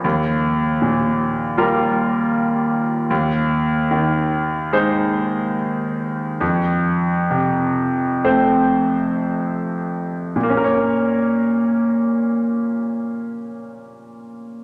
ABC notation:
X:1
M:4/4
L:1/8
Q:1/4=69
K:Bbdor
V:1 name="Grand piano"
E,,2 B,,2 [G,FB]4 | E,,2 E,2 [A,Ec]4 | F,,2 C,2 [=A,Cc]4 | [B,,B,DBd]8 |]